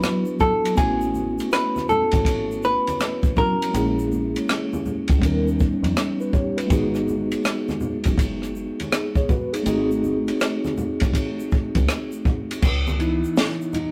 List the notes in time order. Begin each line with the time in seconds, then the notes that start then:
Already playing: F#3 B3 D4 E4 F#4 B4
0.03 cross-stick, hi-hat pedal, ride, shaker
0.26 shaker
0.40 A4, kick, low conga, shaker
0.65 ride, shaker
0.73 A3 B3 C#4, shaker
0.77 A1 E4 F#4 G#4, kick, ride
1.01 shaker
1.15 high conga, shaker
1.38 ride, shaker
1.52 B4, cross-stick, hi-hat pedal, ride, shaker
1.76 cross-stick, high conga, shaker
1.89 A4, low conga, shaker
2.12 G#1, kick, cross-stick, ride, shaker
2.25 kick, ride, shaker
2.51 shaker
2.63 B4, shaker
2.87 ride, high conga, shaker
3.00 cross-stick, hi-hat pedal, ride, shaker
3.23 kick, shaker
3.35 F#3 B3 C#4 E4 F#4 A#4, kick, low conga, shaker
3.62 ride, shaker
3.71 A#1 G#3 A#3 C#4, ride, shaker
3.75 E4 G#4
3.99 shaker
4.12 high conga, shaker
4.36 ride, shaker
4.49 cross-stick, hi-hat pedal, ride, shaker
4.73 high conga, shaker
4.86 low conga, shaker
5.08 C#2, kick, cross-stick, ride, shaker
5.19 D#2 G3 B3 C#4, kick
5.23 D#4 A#4, ride, shaker
5.47 shaker
5.60 kick, shaker
5.83 F2, ride, high conga, shaker
5.97 cross-stick, hi-hat pedal, ride, shaker
6.20 F4 B4, shaker
6.33 G4 C#5, kick, low conga, shaker
6.57 F4 B4, ride, shaker
6.66 G#1 G#3 B3 D#4, ride
6.70 F#4 G#4, kick, shaker
6.95 cross-stick, shaker
7.08 high conga, shaker
7.32 ride, shaker
7.45 cross-stick, hi-hat pedal, ride, shaker
7.68 cross-stick, high conga, shaker
7.81 low conga, shaker
8.04 F#1, kick, cross-stick, ride, shaker
8.18 kick, ride, shaker
8.42 cross-stick, shaker
8.56 shaker
8.80 ride, high conga, shaker
8.92 D#4 G#4, cross-stick, hi-hat pedal, ride, shaker
9.15 G#4 C#5, kick, shaker
9.29 F#4 B4, kick, low conga, shaker
9.53 D#4 G#4, ride, shaker
9.63 G#1 A3 C4 D#4, ride, shaker
9.67 F#4 G#4
9.91 shaker
10.04 high conga, shaker
10.28 ride, shaker
10.40 cross-stick, hi-hat pedal, ride, shaker
10.65 cross-stick, high conga, shaker
10.78 low conga, shaker
11.00 C2, kick, cross-stick, ride, shaker
11.13 kick, ride, shaker
11.40 shaker
11.51 kick, shaker
11.75 C#2, kick, ride, high conga, shaker
11.88 cross-stick, hi-hat pedal, ride, shaker
12.12 shaker
12.25 kick, low conga, shaker
12.51 ride, shaker
12.62 C#2, kick, crash, shaker
12.87 high conga, shaker
12.98 E3 B3 D#4 E4, ride, shaker
13.24 shaker
13.37 snare, hi-hat pedal, ride, shaker
13.61 shaker
13.73 D#4, ride, low conga, shaker